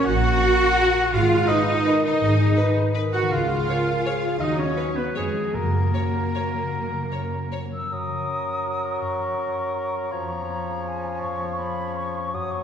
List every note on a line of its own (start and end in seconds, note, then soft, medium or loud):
0.00 0.22 A#3 medium
0.00 0.13 C#4 medium
0.00 0.31 F#4 medium
0.00 0.40 A#4 medium
0.00 0.41 A#4 medium
0.00 0.59 F#5 medium
0.00 0.68 A#5 medium
0.04 0.35 A#1 medium
0.04 1.15 A#2 medium
0.04 1.13 F#4 loud
0.04 1.11 F#4 loud
0.04 1.12 F#5 loud
0.04 1.15 F#5 medium
0.14 0.95 C#4 medium
0.23 1.03 A#3 medium
0.32 1.14 F#4 medium
0.41 0.49 F#4 medium
0.41 0.78 A#4 medium
0.51 0.78 C#5 medium
0.70 1.14 A#5 medium
0.78 0.86 F#4 medium
0.78 1.14 F#4 medium
0.78 1.14 C#5 medium
0.88 1.14 A#4 medium
0.96 1.14 C#4 medium
1.04 1.14 A#3 soft
1.12 1.42 G#1 medium
1.12 2.20 G#2 medium
1.12 1.47 F4 medium
1.12 1.47 F4 loud
1.12 1.50 G#4 medium
1.12 1.47 F5 medium
1.12 1.49 F5 medium
1.21 2.12 D#3 soft
1.30 2.03 G#3 medium
1.39 2.47 D#4 medium
1.47 2.03 D#4 medium
1.47 2.03 D#4 loud
1.47 1.56 B4 medium
1.47 1.87 B4 medium
1.47 2.04 D#5 medium
1.57 1.84 G#4 medium
1.85 2.22 A#4 medium
1.85 1.93 B4 medium
1.95 2.56 B4 medium
2.04 2.29 G#3 medium
2.04 2.75 D#4 medium
2.04 2.76 D#4 medium
2.04 2.75 D#5 medium
2.04 2.76 D#5 medium
2.13 2.38 D#3 soft
2.21 2.51 G#1 medium
2.21 3.32 G#2 medium
2.21 2.58 G#4 medium
2.31 3.12 G#3 soft
2.39 3.21 D#3 medium
2.48 3.32 D#4 medium
2.56 2.64 B4 medium
2.56 2.95 B4 medium
2.66 2.94 G#4 medium
2.76 3.32 D#5 soft
2.94 3.56 G#4 soft
2.94 3.30 A#4 medium
2.94 3.03 B4 medium
3.05 3.32 B4 soft
3.13 3.38 G#3 soft
3.13 3.30 F#4 medium
3.13 3.21 F#5 medium
3.13 3.20 F#5 medium
3.13 3.34 F#5 medium
3.22 3.32 D#3 soft
3.30 3.61 C#2 medium
3.30 4.41 C#3 medium
3.30 4.39 F4 medium
3.30 4.40 F4 medium
3.30 3.66 G#4 medium
3.30 4.42 F5 medium
3.30 4.37 F5 medium
3.30 4.41 F5 medium
3.39 4.22 G#3 soft
3.48 3.65 C#4 soft
3.58 4.04 G#4 soft
3.67 4.13 C#4 soft
3.67 4.04 A#4 medium
3.67 3.76 C#5 soft
3.77 3.94 C#5 soft
3.96 4.41 C#5 soft
4.05 4.39 G#4 medium
4.05 4.41 G#4 soft
4.05 4.13 C#5 soft
4.14 4.29 C#4 soft
4.23 4.41 G#3 soft
4.31 4.41 C#4 soft
4.39 4.70 D#2 medium
4.39 5.17 D#3 soft
4.39 4.57 D#4 medium
4.39 5.16 F#4 medium
4.39 4.57 D#5 medium
4.39 4.60 D#5 medium
4.39 4.58 D#5 medium
4.48 5.17 F#3 soft
4.57 5.56 B3 soft
4.57 4.96 C#4 medium
4.57 4.96 C#5 medium
4.57 4.98 C#5 medium
4.57 4.97 C#5 medium
4.67 4.85 B4 soft
4.76 5.17 F#4 soft
4.76 4.85 B4 soft
4.95 5.16 B3 medium
4.95 5.15 B4 soft
4.95 5.18 B4 medium
4.95 5.05 B4 soft
4.95 5.56 B5 soft
5.06 5.17 F#5 soft
5.15 5.48 F2 soft
5.15 5.56 F2 soft
5.15 5.53 G#3 soft
5.15 5.54 G#3 medium
5.15 5.53 G#4 medium
5.15 5.54 G#4 soft
5.15 5.56 G#4 soft
5.15 5.23 C#5 soft
5.27 5.56 F3 soft
5.36 5.56 G#3 soft
5.45 5.83 C#4 soft
5.54 6.10 F#2 medium
5.54 5.87 F#2 soft
5.54 6.71 F#2 soft
5.54 7.72 A#3 medium
5.54 7.73 A#3 medium
5.54 7.69 F#4 soft
5.54 7.72 A#4 soft
5.54 7.49 A#4 soft
5.54 7.73 A#4 medium
5.64 6.62 C#3 soft
5.84 7.00 C#4 soft
5.94 6.02 C#5 soft
6.04 6.33 F#4 soft
6.15 7.31 C#5 soft
6.34 7.21 F#4 soft
6.34 6.43 C#5 soft
6.53 6.80 F#3 soft
6.63 6.90 C#3 soft
6.72 7.90 F#2 soft
6.72 7.05 F#2 soft
6.82 7.70 F#3 soft
6.92 7.81 C#3 soft
7.02 8.27 C#4 soft
7.12 7.20 C#5 soft
7.22 7.51 F#4 soft
7.32 11.22 C#5 soft
7.42 10.13 A#5 soft
7.52 8.65 F#4 soft
7.52 7.60 C#5 soft
7.62 8.46 A#4 soft
7.71 8.08 F#3 soft
7.71 7.94 E6 medium
7.82 7.92 C#3 soft
7.90 9.00 F#2 soft
7.90 10.14 F#3 medium
7.90 10.08 A#4 soft
7.90 9.00 D#6 medium
8.09 9.18 F#3 soft
8.28 9.36 C#4 soft
8.66 9.75 F#4 soft
9.01 10.13 F#2 soft
9.01 10.13 C#6 medium
9.19 10.13 F#3 soft
9.38 10.48 C#4 soft
9.76 10.13 F#4 soft
9.95 10.14 A#4 soft
10.12 11.22 F2 soft
10.12 12.33 F3 medium
10.12 12.30 C#5 soft
10.12 10.89 A#5 medium
10.30 11.39 B3 soft
10.49 11.58 C#4 soft
10.68 11.04 G#4 soft
10.87 11.97 B4 soft
10.87 11.21 G#5 medium
11.06 11.78 G#4 soft
11.22 12.35 F2 soft
11.22 11.50 C#6 medium
11.40 12.35 B3 soft
11.51 11.60 C#6 soft
11.58 12.63 C#4 soft
11.58 11.98 B5 medium
11.79 12.15 G#4 soft
11.96 12.36 C#6 medium
12.16 12.35 G#4 soft
12.34 12.63 F#2 soft
12.34 12.63 F#3 medium
12.34 12.63 C#5 soft
12.34 12.53 D#6 medium
12.52 12.63 A#3 soft
12.52 12.63 C#6 medium